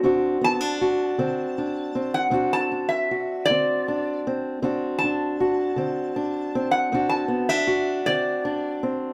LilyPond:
<<
  \new Staff \with { instrumentName = "Resonator guitar played with a steel bar" } { \time 12/8 \key d \mixolydian \tempo 4. = 52 r8 a''2~ a''16 fis''8 a''8 e''8. d''4 r8 | r8 a''2~ a''16 fis''8 a''8 e''8. d''4 r8 | }
  \new Staff \with { instrumentName = "Steel-string acoustic guitar" } { \time 12/8 \key d \mixolydian << { <c' d' fis'>8 b16 d'16 fis'8 c'8 d'8 c'8 <c' d' fis'>8 d'8 fis'8 c'8 d'8 c'8 | <c' d' fis'>8 d'8 fis'8 c'8 d'8 c'8 <c' d' fis'>8 b16 d'16 fis'8 c'8 d'8 c'8 | } \\ { d,4 r8 d4 r8 d,4 r8 d4 r8 | d,4 r8 d4 r8 d,4 r8 d4 r8 | } >> }
>>